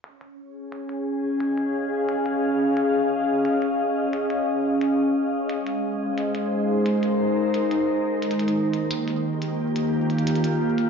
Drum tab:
HH |x-x-----x-x-----x-x-----x-x-----|x-------x-x-----x-x-----x-------|x-x-----x-x-----x-x-----x-x-----|xxxx--x-x-x---x---x---xxxxx---x-|